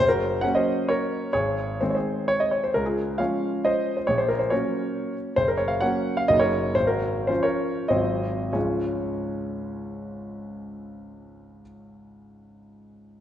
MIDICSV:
0, 0, Header, 1, 2, 480
1, 0, Start_track
1, 0, Key_signature, -5, "major"
1, 0, Tempo, 441826
1, 9, Time_signature, 3, 2, 24, 8
1, 1449, Tempo, 478088
1, 2409, Tempo, 454890
1, 3849, Tempo, 432277
1, 6249, Tempo, 473934
1, 7209, Tempo, 530035
1, 7689, Tempo, 612245
1, 8169, Tempo, 634249
1, 11049, Tempo, 594648
1, 12254, End_track
2, 0, Start_track
2, 0, Title_t, "Grand piano"
2, 0, Program_c, 0, 0
2, 0, Note_on_c, 0, 30, 60
2, 92, Note_on_c, 0, 70, 68
2, 103, Note_on_c, 0, 66, 47
2, 187, Control_c, 0, 64, 127
2, 439, Note_off_c, 0, 66, 0
2, 449, Note_on_c, 0, 78, 79
2, 451, Note_off_c, 0, 30, 0
2, 459, Note_off_c, 0, 70, 0
2, 467, Note_on_c, 0, 54, 43
2, 469, Note_on_c, 0, 58, 42
2, 473, Note_on_c, 0, 61, 51
2, 485, Control_c, 0, 64, 0
2, 586, Note_off_c, 0, 78, 0
2, 595, Note_on_c, 0, 75, 74
2, 609, Note_on_c, 0, 72, 54
2, 949, Note_off_c, 0, 72, 0
2, 962, Note_on_c, 0, 73, 72
2, 967, Note_off_c, 0, 75, 0
2, 976, Note_on_c, 0, 70, 55
2, 1403, Note_off_c, 0, 54, 0
2, 1405, Note_off_c, 0, 58, 0
2, 1407, Note_off_c, 0, 61, 0
2, 1420, Note_off_c, 0, 70, 0
2, 1429, Note_off_c, 0, 73, 0
2, 1446, Note_on_c, 0, 73, 77
2, 1453, Note_on_c, 0, 68, 56
2, 1458, Note_on_c, 0, 32, 50
2, 1670, Control_c, 0, 64, 127
2, 1890, Note_off_c, 0, 68, 0
2, 1912, Note_off_c, 0, 32, 0
2, 1920, Note_off_c, 0, 73, 0
2, 1923, Note_on_c, 0, 72, 50
2, 1932, Note_on_c, 0, 51, 37
2, 1933, Control_c, 0, 64, 0
2, 1933, Note_on_c, 0, 56, 33
2, 1942, Note_on_c, 0, 60, 45
2, 2000, Note_off_c, 0, 72, 0
2, 2019, Note_on_c, 0, 73, 47
2, 2066, Note_on_c, 0, 72, 53
2, 2083, Note_on_c, 0, 68, 38
2, 2085, Note_off_c, 0, 73, 0
2, 2390, Note_off_c, 0, 68, 0
2, 2398, Note_on_c, 0, 73, 83
2, 2404, Note_off_c, 0, 72, 0
2, 2525, Note_on_c, 0, 75, 62
2, 2527, Note_off_c, 0, 73, 0
2, 2644, Note_on_c, 0, 73, 59
2, 2651, Note_off_c, 0, 75, 0
2, 2770, Note_off_c, 0, 73, 0
2, 2776, Note_on_c, 0, 72, 57
2, 2854, Note_off_c, 0, 51, 0
2, 2854, Note_off_c, 0, 56, 0
2, 2859, Note_off_c, 0, 60, 0
2, 2886, Note_on_c, 0, 70, 69
2, 2891, Note_off_c, 0, 72, 0
2, 2895, Note_on_c, 0, 37, 46
2, 3002, Note_off_c, 0, 70, 0
2, 3009, Note_on_c, 0, 68, 49
2, 3017, Note_on_c, 0, 65, 36
2, 3114, Control_c, 0, 64, 127
2, 3346, Note_off_c, 0, 65, 0
2, 3349, Note_on_c, 0, 77, 65
2, 3352, Note_off_c, 0, 37, 0
2, 3359, Note_on_c, 0, 53, 36
2, 3363, Note_on_c, 0, 73, 45
2, 3367, Note_off_c, 0, 68, 0
2, 3371, Note_on_c, 0, 56, 36
2, 3373, Control_c, 0, 64, 0
2, 3373, Note_on_c, 0, 61, 40
2, 3816, Note_off_c, 0, 73, 0
2, 3839, Note_on_c, 0, 75, 77
2, 3842, Note_off_c, 0, 77, 0
2, 3850, Note_on_c, 0, 72, 61
2, 4180, Note_off_c, 0, 72, 0
2, 4197, Note_on_c, 0, 72, 50
2, 4200, Note_off_c, 0, 75, 0
2, 4275, Note_off_c, 0, 53, 0
2, 4281, Note_off_c, 0, 56, 0
2, 4282, Note_off_c, 0, 61, 0
2, 4310, Note_on_c, 0, 73, 71
2, 4317, Note_off_c, 0, 72, 0
2, 4323, Note_on_c, 0, 34, 47
2, 4433, Note_off_c, 0, 73, 0
2, 4434, Note_on_c, 0, 72, 59
2, 4542, Control_c, 0, 64, 127
2, 4549, Note_on_c, 0, 70, 54
2, 4557, Note_off_c, 0, 72, 0
2, 4667, Note_on_c, 0, 72, 57
2, 4678, Note_off_c, 0, 70, 0
2, 4790, Note_on_c, 0, 73, 61
2, 4795, Note_off_c, 0, 34, 0
2, 4800, Note_off_c, 0, 72, 0
2, 4803, Note_on_c, 0, 54, 36
2, 4803, Note_on_c, 0, 70, 44
2, 4810, Note_on_c, 0, 58, 36
2, 4811, Note_on_c, 0, 61, 41
2, 4818, Control_c, 0, 64, 0
2, 5482, Note_off_c, 0, 70, 0
2, 5520, Note_off_c, 0, 73, 0
2, 5710, Note_off_c, 0, 54, 0
2, 5713, Note_off_c, 0, 58, 0
2, 5714, Note_off_c, 0, 61, 0
2, 5747, Note_on_c, 0, 72, 86
2, 5755, Note_on_c, 0, 30, 56
2, 5868, Note_off_c, 0, 72, 0
2, 5877, Note_on_c, 0, 70, 57
2, 5946, Control_c, 0, 64, 127
2, 5981, Note_on_c, 0, 73, 63
2, 5996, Note_off_c, 0, 70, 0
2, 6096, Note_on_c, 0, 77, 66
2, 6113, Note_off_c, 0, 73, 0
2, 6234, Note_off_c, 0, 30, 0
2, 6237, Note_on_c, 0, 78, 79
2, 6239, Note_off_c, 0, 77, 0
2, 6251, Note_on_c, 0, 54, 42
2, 6254, Note_on_c, 0, 73, 55
2, 6259, Control_c, 0, 64, 0
2, 6261, Note_on_c, 0, 58, 46
2, 6263, Note_on_c, 0, 61, 46
2, 6591, Note_off_c, 0, 73, 0
2, 6607, Note_on_c, 0, 77, 74
2, 6609, Note_off_c, 0, 78, 0
2, 6695, Note_off_c, 0, 54, 0
2, 6700, Note_off_c, 0, 58, 0
2, 6701, Note_off_c, 0, 61, 0
2, 6722, Note_on_c, 0, 75, 89
2, 6726, Note_on_c, 0, 54, 49
2, 6731, Note_off_c, 0, 77, 0
2, 6733, Note_on_c, 0, 30, 60
2, 6739, Note_on_c, 0, 58, 43
2, 6743, Note_on_c, 0, 63, 44
2, 6835, Note_on_c, 0, 73, 82
2, 6844, Note_on_c, 0, 70, 56
2, 6848, Note_off_c, 0, 75, 0
2, 6926, Control_c, 0, 64, 127
2, 7165, Note_off_c, 0, 54, 0
2, 7172, Note_off_c, 0, 58, 0
2, 7173, Note_off_c, 0, 63, 0
2, 7180, Note_off_c, 0, 70, 0
2, 7194, Note_on_c, 0, 72, 79
2, 7195, Note_off_c, 0, 30, 0
2, 7201, Note_off_c, 0, 73, 0
2, 7204, Note_on_c, 0, 32, 50
2, 7219, Control_c, 0, 64, 0
2, 7307, Note_on_c, 0, 70, 65
2, 7313, Note_off_c, 0, 72, 0
2, 7321, Note_on_c, 0, 66, 52
2, 7391, Control_c, 0, 64, 127
2, 7665, Note_off_c, 0, 66, 0
2, 7670, Note_on_c, 0, 72, 64
2, 7673, Note_off_c, 0, 32, 0
2, 7684, Note_off_c, 0, 70, 0
2, 7684, Note_on_c, 0, 61, 40
2, 7685, Note_on_c, 0, 53, 42
2, 7685, Note_on_c, 0, 65, 45
2, 7705, Control_c, 0, 64, 0
2, 7794, Note_on_c, 0, 73, 66
2, 7799, Note_off_c, 0, 72, 0
2, 7803, Note_on_c, 0, 70, 50
2, 8136, Note_off_c, 0, 53, 0
2, 8136, Note_off_c, 0, 61, 0
2, 8136, Note_off_c, 0, 65, 0
2, 8142, Note_off_c, 0, 70, 0
2, 8151, Note_on_c, 0, 75, 66
2, 8163, Note_off_c, 0, 73, 0
2, 8163, Note_on_c, 0, 32, 52
2, 8165, Note_on_c, 0, 54, 39
2, 8165, Note_on_c, 0, 72, 53
2, 8167, Note_on_c, 0, 60, 39
2, 8173, Note_on_c, 0, 65, 38
2, 8405, Control_c, 0, 64, 127
2, 8624, Note_off_c, 0, 54, 0
2, 8624, Note_off_c, 0, 72, 0
2, 8625, Note_off_c, 0, 60, 0
2, 8628, Note_off_c, 0, 65, 0
2, 8638, Note_on_c, 0, 37, 44
2, 8639, Note_off_c, 0, 32, 0
2, 8640, Note_on_c, 0, 73, 44
2, 8641, Note_on_c, 0, 44, 37
2, 8642, Note_on_c, 0, 53, 35
2, 8645, Note_on_c, 0, 61, 35
2, 8646, Note_on_c, 0, 56, 34
2, 8646, Note_on_c, 0, 65, 36
2, 8648, Note_off_c, 0, 75, 0
2, 8668, Control_c, 0, 64, 0
2, 8829, Control_c, 0, 64, 127
2, 10964, Note_off_c, 0, 37, 0
2, 10967, Note_off_c, 0, 44, 0
2, 10967, Note_off_c, 0, 73, 0
2, 10969, Note_off_c, 0, 53, 0
2, 10972, Note_off_c, 0, 61, 0
2, 10973, Note_off_c, 0, 56, 0
2, 10973, Note_off_c, 0, 65, 0
2, 12254, End_track
0, 0, End_of_file